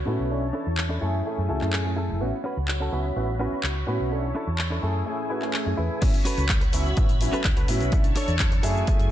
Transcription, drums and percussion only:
0.77 clap
1.61 clap
1.73 clap
2.68 clap
3.63 clap
4.58 clap
5.42 clap
5.54 clap
6.02 kick, closed hi-hat, crash, shaker
6.14 closed hi-hat
6.25 open hi-hat, shaker
6.38 closed hi-hat, shaker
6.49 kick, clap, closed hi-hat, shaker
6.61 closed hi-hat
6.73 open hi-hat, shaker
6.86 shaker
6.97 kick, closed hi-hat, shaker
7.09 closed hi-hat
7.21 open hi-hat, shaker
7.33 shaker
7.44 kick, clap, closed hi-hat, shaker
7.57 closed hi-hat
7.68 open hi-hat, shaker
7.80 closed hi-hat, shaker
7.92 kick, closed hi-hat, shaker
8.04 closed hi-hat
8.16 open hi-hat, shaker
8.28 closed hi-hat, shaker
8.39 kick, clap, closed hi-hat, shaker
8.52 closed hi-hat
8.63 open hi-hat, shaker
8.76 shaker
8.87 kick, closed hi-hat, shaker
9.00 closed hi-hat

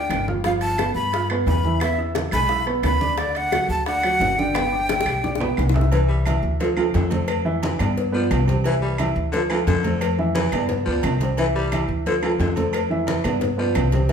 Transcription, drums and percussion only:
0.10 high bongo, low bongo, high conga, high timbale, low timbale, claves
0.28 high conga
0.44 high bongo, high conga, high timbale
0.61 high conga, high timbale
0.78 high bongo, high conga, high timbale, low timbale, claves
0.96 high bongo, high conga
1.13 high bongo, high conga, high timbale
1.30 high bongo, high conga, high timbale, claves
1.47 high bongo, low bongo, high conga, low timbale
1.65 high conga
1.80 high bongo, high timbale, claves
1.99 high conga
2.15 high bongo, high conga, high timbale, low timbale
2.31 high bongo, high conga, low conga, high timbale, claves
2.49 high bongo, high conga
2.66 high bongo, high conga, high timbale
2.83 high bongo, low bongo, high conga, high timbale, low timbale, claves
3.01 high conga
3.18 high bongo, high conga, high timbale
3.35 high conga, high timbale
3.52 high bongo, high conga, high timbale, low timbale, claves
3.69 high bongo, high conga
3.86 high bongo, high conga, high timbale
4.03 high bongo, high conga, high timbale, claves
4.21 high bongo, low bongo, high conga, low timbale
4.39 high conga
4.55 high bongo, high conga, high timbale, claves
4.89 high bongo, high conga, high timbale, low timbale
5.00 high bongo
5.06 high timbale, claves
5.24 low bongo, low conga
5.35 high bongo
5.40 low conga, high timbale
5.57 low bongo, low timbale, claves
5.69 low bongo
5.74 low conga, low timbale
5.81 low bongo
5.92 cowbell, high conga, low agogo
6.11 high conga
6.26 cowbell, high conga, low timbale, low agogo, claves
6.45 high conga
6.60 cowbell, high conga, low agogo
6.77 high conga, low agogo, claves
6.94 cowbell, high conga, low timbale
7.10 cowbell, high conga, low agogo
7.28 cowbell, high conga, low agogo, claves
7.46 high conga
7.63 cowbell, high conga, low timbale, low agogo
7.79 cowbell, high conga, low conga, low agogo, claves
7.97 cowbell, high conga
8.15 high conga
8.31 cowbell, high conga, low timbale, low agogo, claves
8.48 cowbell, high conga, low agogo
8.64 cowbell, high conga, low agogo
8.82 high conga
8.98 cowbell, high conga, low timbale, low agogo, claves
9.16 high conga
9.33 cowbell, high conga, low agogo
9.50 high conga, low agogo, claves
9.67 cowbell, high conga, low timbale
9.84 cowbell, high conga, low agogo
10.01 cowbell, high conga, low agogo, claves
10.19 high conga
10.35 cowbell, high conga, low timbale, low agogo
10.52 cowbell, high conga, low conga, low agogo, claves
10.69 cowbell, high conga, low conga
10.87 high conga
11.03 cowbell, high conga, low timbale, low agogo, claves
11.20 cowbell, high conga, low agogo
11.37 cowbell, high conga, low agogo
11.56 high conga
11.72 cowbell, high conga, low timbale, low agogo, claves
11.89 high conga
12.06 cowbell, high conga, low agogo
12.23 high conga, low agogo, claves
12.40 cowbell, high conga, low timbale
12.56 cowbell, high conga, low agogo
12.73 cowbell, high conga, low agogo, claves
12.91 high conga
13.07 cowbell, high conga, low timbale, low agogo
13.24 cowbell, high conga, low conga, low agogo, claves
13.41 cowbell, high conga, low conga
13.59 high conga
13.75 cowbell, high conga, low timbale, low agogo, claves
13.92 cowbell, high conga, low agogo
14.09 cowbell, low agogo

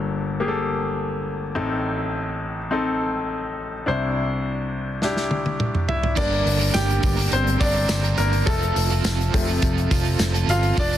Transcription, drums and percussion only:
5.02 snare
5.17 snare
5.31 high tom
5.46 high tom
5.60 mid tom
5.75 mid tom
5.89 floor tom
6.03 floor tom
6.17 kick, crash, tambourine
6.33 open hi-hat
6.47 hi-hat pedal, open hi-hat
6.61 hi-hat pedal, open hi-hat
6.74 snare, hi-hat pedal, open hi-hat, tambourine
6.89 hi-hat pedal, open hi-hat
7.03 kick, hi-hat pedal, open hi-hat, tambourine
7.17 hi-hat pedal, open hi-hat
7.32 hi-hat pedal, open hi-hat, tambourine
7.47 hi-hat pedal
7.61 kick, hi-hat pedal, open hi-hat, tambourine
7.75 open hi-hat
7.89 snare, hi-hat pedal, open hi-hat, tambourine
8.03 hi-hat pedal
8.18 hi-hat pedal, open hi-hat, tambourine
8.33 open hi-hat
8.47 kick, hi-hat pedal, open hi-hat, tambourine
8.62 hi-hat pedal
8.76 hi-hat pedal, open hi-hat
8.90 open hi-hat
9.04 snare, hi-hat pedal, open hi-hat, tambourine
9.20 hi-hat pedal
9.34 kick, hi-hat pedal, open hi-hat, tambourine
9.48 open hi-hat
9.62 kick, hi-hat pedal, open hi-hat, tambourine
9.77 hi-hat pedal
9.91 kick, hi-hat pedal, open hi-hat, tambourine
10.05 open hi-hat
10.19 snare, hi-hat pedal, open hi-hat, tambourine
10.34 hi-hat pedal
10.49 hi-hat pedal, open hi-hat, tambourine
10.63 open hi-hat
10.77 kick, hi-hat pedal, open hi-hat, tambourine
10.92 hi-hat pedal, open hi-hat

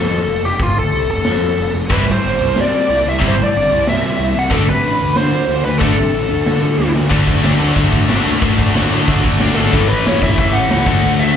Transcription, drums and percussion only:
0.27 open hi-hat
0.59 kick, open hi-hat
0.92 open hi-hat
1.24 snare, open hi-hat
1.57 open hi-hat
1.90 kick, crash
2.22 open hi-hat
2.55 snare, open hi-hat
2.89 open hi-hat
3.21 kick, open hi-hat
3.55 open hi-hat
3.87 snare, open hi-hat
4.19 open hi-hat
4.50 kick, open hi-hat
4.84 open hi-hat
5.15 snare, open hi-hat
5.49 open hi-hat
5.81 kick, open hi-hat
6.14 open hi-hat
6.46 snare, open hi-hat
6.80 snare
6.96 snare
7.11 kick, crash
7.27 kick
7.44 snare, crash
7.76 kick, crash
7.93 kick
8.09 snare, crash
8.42 kick, crash
8.58 kick
8.75 snare, crash
9.08 kick, crash
9.24 kick
9.40 snare, crash
9.58 snare
9.73 kick, crash
9.90 crash
10.06 snare, crash
10.22 kick, crash
10.38 kick, crash
10.55 crash
10.70 snare, crash
10.86 kick, crash
11.02 crash
11.18 crash

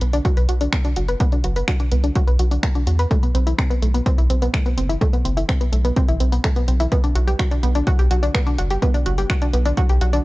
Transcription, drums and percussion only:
0.01 closed hi-hat
0.13 closed hi-hat
0.25 kick, closed hi-hat
0.37 closed hi-hat
0.49 closed hi-hat
0.61 closed hi-hat
0.73 finger snap, kick, closed hi-hat
0.85 closed hi-hat
0.96 closed hi-hat
1.08 closed hi-hat
1.20 kick, closed hi-hat
1.32 closed hi-hat
1.44 closed hi-hat
1.56 closed hi-hat
1.68 finger snap, kick, closed hi-hat
1.80 closed hi-hat
1.91 closed hi-hat
2.04 closed hi-hat
2.15 kick, closed hi-hat
2.28 closed hi-hat
2.39 closed hi-hat
2.51 closed hi-hat
2.63 finger snap, kick, closed hi-hat
2.75 closed hi-hat
2.87 closed hi-hat
2.99 closed hi-hat
3.11 kick, closed hi-hat
3.23 closed hi-hat
3.35 closed hi-hat
3.47 closed hi-hat
3.58 finger snap, kick, closed hi-hat
3.71 closed hi-hat
3.82 closed hi-hat
3.94 closed hi-hat
4.06 kick, closed hi-hat
4.18 closed hi-hat
4.30 closed hi-hat
4.42 closed hi-hat
4.54 finger snap, kick, closed hi-hat
4.66 closed hi-hat
4.78 closed hi-hat
4.90 closed hi-hat
5.01 kick, closed hi-hat
5.13 closed hi-hat
5.25 closed hi-hat
5.37 closed hi-hat
5.49 finger snap, kick, closed hi-hat
5.61 closed hi-hat
5.73 closed hi-hat
5.85 closed hi-hat
5.96 kick, closed hi-hat
6.08 closed hi-hat
6.20 closed hi-hat
6.32 closed hi-hat
6.44 finger snap, kick, closed hi-hat
6.56 closed hi-hat
6.68 closed hi-hat
6.80 closed hi-hat
6.92 kick, closed hi-hat
7.04 closed hi-hat
7.16 closed hi-hat
7.28 closed hi-hat
7.39 finger snap, kick, closed hi-hat
7.51 closed hi-hat
7.63 closed hi-hat
7.75 closed hi-hat
7.87 kick, closed hi-hat
7.99 closed hi-hat
8.11 closed hi-hat
8.23 closed hi-hat
8.35 finger snap, kick, closed hi-hat
8.47 closed hi-hat
8.58 closed hi-hat
8.70 closed hi-hat
8.82 kick, closed hi-hat
8.94 closed hi-hat
9.06 closed hi-hat
9.18 closed hi-hat
9.30 finger snap, kick, closed hi-hat
9.42 closed hi-hat
9.53 closed hi-hat
9.66 closed hi-hat
9.77 kick, closed hi-hat
9.89 closed hi-hat
10.01 closed hi-hat
10.13 closed hi-hat

